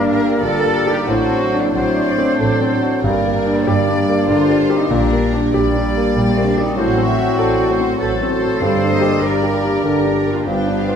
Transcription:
Already playing: G1 G2 G3 A#3 D4 G4 A#4
0.00 D4
0.09 G3 A#4 D5
0.20 A#3
0.41 G1 D3 G3 F4 A4 A#4 D5
0.63 A#3
0.75 G3 A#4 D5
0.86 G4
0.92 D#4 G4
1.07 A1 A2 F#3 C4 D4 F#4 A4 C5 D5
1.31 C4
1.41 F#3 C5 D5
1.52 D4
1.59 A#3 D4
1.73 A1 F#3 A3 D4 F#4 C5 D5
1.96 D4
2.06 F#3 C5 D5
2.18 C4
2.38 A1 F#3 A3 A4 C5 D5
2.61 C4
2.72 F#3 C5 D5
2.82 F#4
3.03 G1 G2 G3 A#3 D4 G4 A#4 D5
3.25 A#3
3.35 G3 A#4 D5
3.46 D4
3.66 G1 G3 G4 A#4 D5
3.88 D4
3.98 G3 A#4 D5
4.09 A#3
4.28 G1 D3 G3 D4 F4 A#4 C5 D5
4.49 A#3
4.59 G3 A#4 D5
4.70 G4
4.75 C4 D#4
4.90 A#1 A#2 G3 A#3 D4 G4 A#4 D5
5.12 A#3
5.22 G3 G4 D5
5.33 D4
5.38 G3 A#3
5.54 A#1 G3 A#3 G4 D5
5.76 D4
5.86 G3 G4 D5
5.97 A#3
6.16 A#1 G3 G4 D5
6.33 A3 C4
6.37 A#3
6.47 G3 A#3 D4 G4 D5
6.58 G4
6.63 C4 D#4
6.76 A1 A2 F#3 C4 F#4 A4 C5
6.97 C4
7.07 F#3 A3 A4 C5 E5
7.18 F#4
7.37 A1 F#3 F#4 A4 C5 D5
7.59 F#4
7.68 F#3 A3 A4 C5
7.80 C4
7.98 A1 F#3 A3 F#4 A4 B4 C5
8.22 C4
8.30 F#3 A3 A4 C5
8.42 A4
8.61 G1 G2 G3 D4 G4 A4 A#4 C5 D5
8.83 D4
8.92 G3 A#3 A#4 D5 D#5
9.01 G4
9.22 G1 G3 G4 A#4 D5
9.43 G4
9.53 G3 A#3 A#4 D5
9.64 D4
9.84 G1 D3 G3 G4 A#4 D5
10.05 D4
10.16 G3 A#3 A#4 D5
10.26 A#4
10.32 D4 F4
10.47 G1 G2 F3 B3 D4 F4 G4 B4 G5
10.67 D4
10.81 B3 F4 F5
10.88 F4 B4

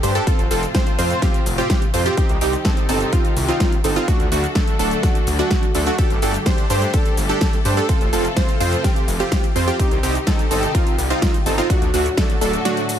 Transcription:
Already playing: A2 D3 G3 D4 G4, sub drop
0.03 G2 D4 G4 C5, open hi-hat, shaker
0.15 D4 G4 A4, closed hi-hat, shaker
0.27 A2 C3 F3 C4 F4 A4, kick, closed hi-hat, shaker
0.39 F1, closed hi-hat, shaker
0.51 F1 C4 F4 A4, open hi-hat, shaker
0.63 closed hi-hat, shaker
0.75 C4 F4 C5, kick, snare, closed hi-hat, shaker
0.87 closed hi-hat, shaker
0.98 F2 C4 F4 C5, open hi-hat, shaker
1.10 closed hi-hat, shaker
1.22 C4 F4 G4, kick, snare, closed hi-hat, shaker
1.34 closed hi-hat, shaker
1.46 F1, open hi-hat, shaker
1.58 C4 F4 G4, closed hi-hat, shaker
1.70 C4 F4 G4, kick, snare, closed hi-hat, shaker
1.82 closed hi-hat, shaker
1.94 F2 C4 F4 C5, open hi-hat, shaker
2.06 C4 F4 G4, closed hi-hat, shaker
2.17 D#3 G3 C4 D#4 G4, kick, closed hi-hat, shaker
2.29 C2, closed hi-hat, shaker
2.41 C2 C4 D#4 G4, open hi-hat, shaker
2.53 closed hi-hat, shaker
2.65 C4 D#4 A4, kick, snare, closed hi-hat, shaker
2.77 closed hi-hat, shaker
2.89 G1 C4 D#4 A4, open hi-hat, shaker
3.01 closed hi-hat, shaker
3.13 C4 D#4 F4, kick, closed hi-hat, shaker
3.25 closed hi-hat, shaker
3.37 C2, open hi-hat, shaker
3.48 C4 D#4 F4, closed hi-hat, shaker
3.60 C4 D#4 F4, kick, snare, closed hi-hat, shaker
3.72 closed hi-hat, shaker
3.84 G1 C4 D#4 A4, open hi-hat, shaker
3.96 C4 D#4 F4, closed hi-hat, shaker
4.08 D3 F#3 A3 D4 F#4 A4, kick, closed hi-hat, shaker
4.20 D2, closed hi-hat, shaker
4.32 D2 A3 D4 F#4, open hi-hat, shaker
4.44 closed hi-hat, shaker
4.55 A3 D4 A4, kick, snare, closed hi-hat, shaker
4.67 closed hi-hat, shaker
4.79 D1 A3 D4 A4, open hi-hat, shaker
4.91 closed hi-hat, shaker
5.03 A3 D4 F#4, kick, snare, closed hi-hat, shaker
5.15 closed hi-hat, shaker
5.27 D2, open hi-hat, shaker
5.39 A3 D4 F#4, closed hi-hat, shaker
5.51 A3 F#4, kick, snare, closed hi-hat, shaker
5.63 closed hi-hat, shaker
5.75 D2 A3 D4 A4, open hi-hat, shaker
5.86 A3 D4 F#4, closed hi-hat, shaker
5.98 D3 G3 D4 G4 A4, kick, closed hi-hat, ride, shaker
6.10 G1, closed hi-hat, shaker
6.22 G1 D4 G4 A4, open hi-hat, shaker
6.34 closed hi-hat, shaker
6.46 D4 G4 C5, kick, snare, closed hi-hat, ride, shaker
6.58 closed hi-hat, shaker
6.70 G2 D4 G4 C5, open hi-hat, shaker
6.82 closed hi-hat, shaker
6.94 G4 A4, kick, closed hi-hat, ride, shaker
7.05 closed hi-hat, shaker
7.17 G1, open hi-hat, shaker
7.29 D4 G4 A4, closed hi-hat, shaker
7.41 D4 G4 A4, kick, snare, closed hi-hat, ride, shaker
7.53 closed hi-hat, shaker
7.65 G2 D4 G4 C5, open hi-hat, shaker
7.77 D4 G4 A4, closed hi-hat, shaker
7.89 C3 F3 C4 F4 A4, kick, closed hi-hat, ride, shaker
8.01 F1, closed hi-hat, shaker
8.13 F1 C4 F4 A4, open hi-hat, shaker
8.25 closed hi-hat, shaker
8.36 C4 F4 C5, kick, snare, closed hi-hat, ride, shaker
8.49 closed hi-hat, shaker
8.60 F2 C4 F4 C5, open hi-hat, shaker
8.72 closed hi-hat, shaker
8.84 C4 F4 G4, kick, snare, closed hi-hat, ride, shaker
8.96 closed hi-hat, shaker
9.08 F1, open hi-hat, shaker
9.20 C4 F4 G4, closed hi-hat, shaker
9.32 C4 F4 G4, kick, snare, closed hi-hat, ride, shaker
9.44 closed hi-hat, shaker
9.56 F2 C4 F4 C5, open hi-hat, shaker
9.68 C4 F4 G4, closed hi-hat, shaker
9.79 C3 D#3 G3 C4 D#4 G4, kick, closed hi-hat, ride, shaker
9.91 C2, closed hi-hat, shaker
10.03 C2 C4 D#4 G4, open hi-hat, shaker
10.15 closed hi-hat, shaker
10.27 C4 D#4 A4, kick, snare, closed hi-hat, ride, shaker
10.39 closed hi-hat, shaker
10.51 G1 C4 D#4 A4, open hi-hat, shaker
10.63 closed hi-hat, shaker
10.75 C4 D#4 F4, kick, closed hi-hat, ride, shaker
10.87 closed hi-hat, shaker
10.98 C2, open hi-hat, shaker
11.10 C4 D#4 F4, closed hi-hat, shaker
11.22 C4 F4, kick, snare, closed hi-hat, ride, shaker
11.34 closed hi-hat, shaker
11.46 G1 C4 D#4 A4, open hi-hat, shaker
11.58 C4 D#4 F4, closed hi-hat, shaker
11.70 A2 D3 F#3 A3 D4 F#4, kick, closed hi-hat, ride, shaker
11.82 D2, closed hi-hat, shaker
11.94 D2 A3 D4 F#4, open hi-hat, shaker
12.06 closed hi-hat, shaker
12.17 A3 D4 A4, kick, snare, closed hi-hat, ride, shaker
12.30 closed hi-hat, shaker
12.41 D1 A3 D4 A4, open hi-hat, shaker
12.53 closed hi-hat, shaker
12.65 A3 D4 F#4, snare, closed hi-hat, ride, shaker
12.77 closed hi-hat, shaker
12.89 open hi-hat, shaker

